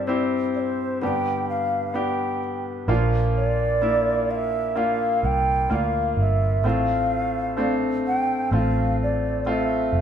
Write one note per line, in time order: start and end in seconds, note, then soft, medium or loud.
0.00 0.51 G2 soft
0.00 0.51 G3 soft
0.00 0.07 C4 medium
0.00 0.08 E4 medium
0.00 0.09 G4 medium
0.00 0.24 D5 medium
0.07 0.97 C4 medium
0.07 0.97 E4 soft
0.07 0.98 G4 medium
0.55 0.60 D5 medium
0.59 0.99 C5 medium
1.02 2.39 G2 soft
1.02 2.38 D3 soft
1.02 1.91 B3 medium
1.02 1.91 D4 medium
1.02 1.92 G4 medium
1.02 1.46 G5 medium
1.49 1.97 F5 medium
1.94 2.84 B3 medium
1.94 2.84 D4 medium
1.94 2.85 G4 medium
1.94 2.66 G5 medium
2.88 5.19 A#1 medium
2.88 4.26 A#2 medium
2.88 4.26 F3 medium
2.88 3.78 A#3 medium
2.88 3.78 D4 soft
2.88 3.78 F4 medium
3.36 4.32 D5 medium
3.82 4.71 A#3 medium
3.82 4.71 D4 soft
3.82 4.72 E4 medium
4.31 4.36 F5 medium
4.35 4.79 E5 medium
4.75 5.65 A#3 medium
4.75 5.66 D4 medium
4.75 5.66 F4 medium
4.75 5.27 F5 medium
5.23 5.67 C2 medium
5.23 5.72 G5 medium
5.70 6.14 D2 medium
5.70 6.59 A#3 medium
5.70 6.59 D4 medium
5.70 6.60 F4 medium
5.70 5.77 G5 medium
5.76 6.18 F5 medium
6.17 6.64 G1 medium
6.17 6.68 E5 medium
6.64 8.48 A1 medium
6.64 8.01 A2 soft
6.64 7.53 A3 medium
6.64 7.54 C4 medium
6.64 7.54 F4 medium
6.64 7.79 F5 medium
7.57 8.46 A3 medium
7.57 8.47 C4 medium
7.57 8.47 D4 medium
8.07 8.50 G5 medium
8.51 9.88 A1 medium
8.51 9.41 A3 medium
8.51 9.41 C4 medium
8.51 9.42 F4 medium
8.56 8.98 F5 medium
9.03 9.44 D5 medium
9.46 10.01 A3 medium
9.46 10.01 C4 soft
9.46 10.01 F4 medium
9.46 10.01 E5 medium
9.92 10.01 F1 medium